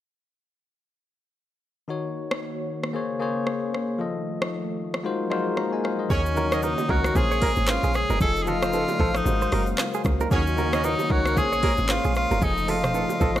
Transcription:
1.88 D#3 A#3 D#4 F#4 C#5
2.31 cross-stick
2.83 cross-stick
2.93 C#3 A#3 G#4 C5 C#5
3.20 A#3 G#4 C5 C#5
3.47 cross-stick
3.74 cross-stick
3.98 D#3 F3 A3 F4 A4 D#5
4.42 cross-stick
4.94 cross-stick
5.04 F#3 G#3 A#3 D#4 F4 F#4 G#4 A#4 C5
5.30 G#3 D#4 F4 F#4 A#4 C5, cross-stick
5.57 F5 A#5, cross-stick
5.73 D#5 G#5
5.84 C5 F5, cross-stick
5.99 A#4 D#5
6.09 D#2 C#3 D#3 F#3 A#3 C#4 D#4 F#4 G#4 A#4 C#5, kick, low conga, shaker
6.26 shaker
6.35 D#3 D#4 F#4 A#4 C#5, low bongo, low conga, shaker
6.52 D#4 F#4 A#4 C#5 D#5, cross-stick, shaker
6.63 D#4 A#4, high bongo, shaker
6.78 low bongo, shaker
6.88 C#2 D#3 C#4 D#4 F#4 A#4 C#5, kick, high bongo
7.04 A#3 D#4 F#4 A#4, cross-stick, shaker
7.14 A#1 C#3 G#3 A#3 C#4 F4 G#4 C5 C#5, kick, low conga, shaker
7.31 C#5, shaker
7.42 A#3 C#4 F4 A#4, kick, open hi-hat, low bongo
7.56 G#1, shaker
7.67 F4, cross-stick, clap, high bongo, shaker
7.83 A#1 G#4, shaker
7.94 G#4, cross-stick, shaker
8.10 F#1 A#4, high bongo, low bongo, shaker
8.19 F1 F3 A3 D#4 F4 G#4 A4 D#5, kick, low conga, shaker
8.36 shaker
8.43 F3 F4 G#4
8.47 F4 A4 D#5, low bongo, low conga, shaker
8.62 C5, cross-stick, shaker
8.73 A4, high bongo, shaker
8.88 low bongo, shaker
8.98 A1 F3 F4 A4 C5, kick, high bongo
9.15 D#4, cross-stick, shaker
9.24 G#1 F#3 G#3 A#3 F#4 A#4 C5 F5, low conga, shaker
9.42 C5, shaker
9.52 F#1 A#4, cross-stick, open hi-hat, low bongo
9.67 shaker
9.78 cross-stick, clap, high bongo, shaker
9.94 G#4, shaker
10.04 C#2, kick, cross-stick, shaker
10.20 A#4, high bongo, low bongo, shaker
10.30 D#2 C#3 D#3 C#4 D#4 F#4 G#4 A#4 C#5, kick, low conga, shaker
10.47 shaker
10.56 D#3 D#4 F#4 A#4 C#5, low bongo, low conga, shaker
10.73 D#4 F#4 A#4 C#5 D#5, cross-stick, shaker
10.84 D#4 A#4, high bongo, shaker
10.99 low bongo, shaker
11.09 C#2 D#3 C#4 D#4 F#4 A#4 C#5, kick, high bongo
11.25 A#3 D#4 F#4 A#4, cross-stick, shaker
11.35 A#1 C#3 G#3 A#3 C#4 F4 G#4 C5 C#5, kick, low conga, shaker
11.53 C#5, shaker
11.63 A#3 C#4 F4 A#4, kick, open hi-hat, low bongo
11.77 G#1, shaker
11.88 F4, cross-stick, clap, high bongo, shaker
12.04 A#1 G#4, shaker
12.15 F4, cross-stick, shaker
12.31 F#1 A#4, high bongo, low bongo, shaker
12.41 F1 F3 A3 D#4 F4 G#4 A4 D#5, kick, low conga, shaker
12.57 shaker
12.67 F3 F4 A4 D#5, open hi-hat, low bongo, low conga, shaker
12.84 C5, cross-stick, mid tom, shaker
12.94 A4, high bongo, shaker
13.09 low bongo, shaker
13.19 A1 F3 F4 A4 D#5, kick, high bongo, shaker
13.36 cross-stick

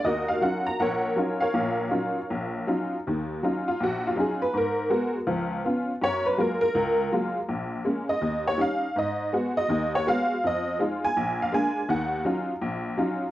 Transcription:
0.04 D#2 F#4 A#4 D#5
0.28 F5
0.41 F#3 C#4 D#4 F4 F#5
0.66 A#5
0.80 A#1 A#4 C#5 F#5
1.16 F#3 C#4 D#4 F4
1.40 A#4 C#5 F5
1.53 A#1 A#2
1.91 F#3 C#4 D#4 F4
2.30 A#1
2.67 F#3 C#4 D#4 F4
3.07 D#2 D#3
3.43 F#3 C#4 D#4 F4
3.68 F4
3.80 A#1 F#4
4.07 F4
4.16 F#3 C#4 D#4 F4
4.20 G#4
4.42 B4
4.54 G#2 A#4
4.90 G#3 B3 F#4
5.27 C#2 F3
5.64 B3 C#4 F4
6.01 F#2 C#5
6.26 B4
6.38 F#3 G#3 A#3 F4 A#4
6.61 A#4
6.75 C#2
7.12 F#3 G#3 A#3 F4
7.48 A#1
7.84 G#3 A#3 C#4
8.09 D#5
8.21 D#2
8.47 C#5
8.57 G3 C#4 D#4 F5
8.96 G#2 D#5
9.33 G#3 B3 F#4
9.57 D#5
9.68 D#2 D#3
9.95 C#5
10.07 G#3 B3 F#4 F5
10.44 F2 D#5
10.79 G#3 D#4 F4
11.04 G#5
11.17 A#1
11.42 F5
11.52 G#3 A#3 D4 G#5
11.89 D#2 D#3 F#5
12.25 F#3 C#4 D#4 F4
12.62 A#1
12.98 F#3 C#4 D#4 F4

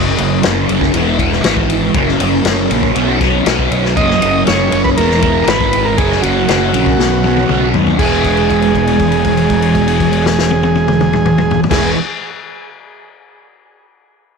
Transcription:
Already playing: F#1 F#2 C#3 F#3 A#3 C#4
0.17 F#1 F#3 A#3 C#4, ride
0.42 F#1 C#3 F#3 A#3 C#4, snare, ride
0.68 F#1 F#3 A#3 C#4, ride
0.81 kick, snare
0.93 E1 E3 G#3 B3 E4, ride
1.19 G#3 B3 E4, kick, ride
1.33 snare
1.44 G#1 E3 G#3 B3 E4, snare, ride
1.57 kick
1.70 ride
1.94 F#1 F#2 C#3 F#3 A#3 C#4, kick, ride
2.08 snare
2.19 F#1 F#3 A#3 C#4, ride
2.44 F#1 C#3 F#3 A#3 C#4, snare, ride
2.69 A#1 F#3 A#3 C#4, ride
2.83 kick
2.95 B1 B2 F#3 B3 C#4, ride
3.20 F#3 B3 C#4, kick, snare, ride
3.46 B1 B2 F#3 B3 C#4, snare, ride
3.59 kick
3.71 B1, ride
3.85 snare
3.96 F#1 F#2 C#3 F#3 A#3 C#4 D#5, kick, ride
4.10 snare
4.21 F#1 F#3 A#3 C#4, ride
4.47 F#1 C#3 F#3 A#3 C#4 C#5, snare, ride
4.72 F#1 F#3 A#3 C#4, ride
4.84 B4, kick
4.97 E1 E3 G#3 B3 E4 A#4, ride
5.11 snare
5.22 G#3 B3 E4, kick, ride
5.47 G#1 E3 G#3 B3 B4, snare, ride
5.51 E4
5.61 kick, snare
5.73 ride
5.85 A#4
5.97 F#1 F#2 C#3 F#3 A#3 C#4 G#4, kick, ride
6.12 snare
6.21 F#1 A#3 C#4 F#4, ride
6.26 F#3
6.47 F#1 C#3 F#3 A#3 C#4, snare, ride
6.72 A#1 F#3 A#3 C#4, ride
6.86 kick
6.98 B1 B2 F#3 B3 C#4, snare
7.23 F#3 B3 C#4, high tom
7.37 high tom
7.48 B1 B2 F#3 B3 C#4, mid tom
7.74 D#2, floor tom
7.87 floor tom
7.98 E1 E3 G#3 B3 E4 G#4, kick, crash
8.24 kick, crash
8.37 crash
8.50 kick, crash
8.62 crash
8.75 kick, crash
8.87 crash
9.00 kick, crash
9.12 crash
9.24 kick, crash
9.37 crash
9.50 kick, crash
9.62 crash
9.75 kick, crash
9.88 crash
10.00 kick, crash
10.13 crash
10.26 snare
10.39 snare
10.51 high tom
10.63 high tom
10.75 high tom
10.88 mid tom
11.01 mid tom
11.13 mid tom
11.26 mid tom
11.38 mid tom
11.51 floor tom
11.64 floor tom
11.70 E1 E3 G#3 B3 E4 G#4, kick, snare, crash

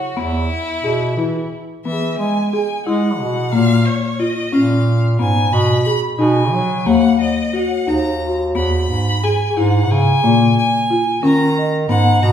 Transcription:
Already playing: F#4 C#5
0.16 E2 B3 E4
0.83 B2 G#4
1.17 E3 E4
1.85 E3 B3 E5
1.92 G#4
2.18 G#3 G#5
2.52 G#4 G#5
2.86 G#3 E4 F#5
3.20 B2
3.51 A#2 A#3 F5
3.85 C#5
4.19 F4 D#5
4.53 A#2 C#4 F5
5.18 G#2 B3 G#5
5.52 B2 B5
5.84 G#4 B5
6.03 B5
6.19 B2 D#4 G#5
6.53 F#3
6.86 D#2 A#3 F#5
7.20 D#5
7.53 F#4 F#5
7.68 C#5
7.87 D#2 D#4 A#5
8.27 F#4
8.55 E2 B3 B5
8.89 G#2
9.24 G#4 G#5
9.50 G#4
9.55 G#2 E4 F#5
9.89 C#3 G#5
10.23 A#2 A#3
10.58 G#5
10.90 F4
11.22 D#3 C#4 A#5
11.58 D#5
11.89 G#2 B3 F#5
12.02 F#5
12.22 B2 A#5

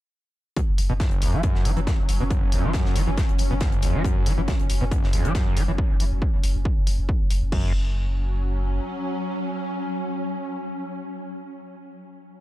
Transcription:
0.56 F#2 F#3 C#4, kick, closed hi-hat
0.68 F#1
0.78 F#1, closed hi-hat, open hi-hat
0.90 F#1 B2
1.00 F#1, kick, snare, closed hi-hat
1.11 F#1, closed hi-hat
1.22 F#1 F#2, closed hi-hat, open hi-hat
1.33 F#1 F#3
1.43 F#2, kick, closed hi-hat
1.55 F#1, snare
1.65 F#1 F#3, closed hi-hat, open hi-hat
1.77 F#1 E3, closed hi-hat
1.87 F#2, kick, snare, closed hi-hat
1.98 F#1
2.09 F#1, closed hi-hat, open hi-hat
2.20 F#1 B2
2.30 F#1, kick, closed hi-hat
2.42 F#1
2.52 F#1 F#2, closed hi-hat, open hi-hat
2.64 F#1 F#3
2.73 F#2, kick, snare, closed hi-hat
2.85 F#1, snare
2.96 F#1 F#3, closed hi-hat, open hi-hat
3.07 F#1 E3
3.17 F#2, kick, snare, closed hi-hat
3.29 F#1, closed hi-hat
3.38 F#1, closed hi-hat, open hi-hat
3.51 F#1 B2
3.61 F#1, kick, snare, closed hi-hat
3.72 F#1, closed hi-hat
3.82 F#1 F#2, closed hi-hat, open hi-hat
3.94 F#1 F#3
4.04 F#2, kick, closed hi-hat
4.16 F#1
4.26 F#1 F#3, closed hi-hat, open hi-hat
4.38 F#1 E3
4.48 F#2, kick, snare, closed hi-hat
4.59 F#1, closed hi-hat
4.69 F#1, closed hi-hat, open hi-hat
4.81 F#1 B2
4.91 F#1, kick, closed hi-hat
5.03 F#1, snare
5.13 F#1 F#2, closed hi-hat, open hi-hat
5.24 F#1 F#3, closed hi-hat
5.35 F#2, kick, snare, closed hi-hat
5.46 F#1
5.57 F#1 F#3, closed hi-hat, open hi-hat
5.68 F#1 E3
5.78 kick
5.90 F#1
6.00 F#1, open hi-hat
6.11 F#1
6.22 kick
6.33 F#1
6.44 F#1, open hi-hat
6.55 F#1
6.65 kick
6.77 F#1
6.87 F#1, open hi-hat
6.98 F#1
7.09 kick
7.20 F#1
7.31 F#1, open hi-hat
7.42 F#1
7.52 F#1 F#2 F#3 C#4, kick, crash

